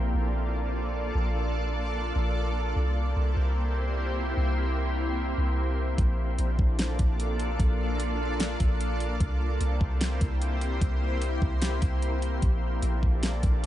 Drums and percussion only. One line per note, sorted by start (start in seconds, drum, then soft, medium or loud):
5.98 kick loud
5.98 closed hi-hat medium
6.38 closed hi-hat medium
6.59 kick loud
6.79 snare loud
6.79 closed hi-hat medium
6.99 kick loud
6.99 closed hi-hat medium
7.20 closed hi-hat medium
7.40 closed hi-hat medium
7.60 kick loud
7.60 closed hi-hat medium
8.00 closed hi-hat medium
8.40 snare loud
8.40 closed hi-hat medium
8.60 kick loud
8.60 closed hi-hat medium
8.81 closed hi-hat medium
9.00 closed hi-hat medium
9.20 kick loud
9.20 closed hi-hat medium
9.61 closed hi-hat medium
9.81 kick loud
10.01 snare loud
10.01 closed hi-hat medium
10.21 kick loud
10.21 closed hi-hat medium
10.42 closed hi-hat medium
10.61 closed hi-hat medium
10.81 kick loud
10.81 closed hi-hat medium
11.22 closed hi-hat medium
11.42 kick loud
11.62 snare loud
11.62 closed hi-hat medium
11.82 kick loud
11.82 closed hi-hat medium
12.02 closed hi-hat medium
12.22 closed hi-hat medium
12.42 kick loud
12.42 closed hi-hat medium
12.82 closed hi-hat medium
13.03 kick medium
13.23 snare loud
13.23 closed hi-hat medium
13.43 kick loud
13.43 closed hi-hat medium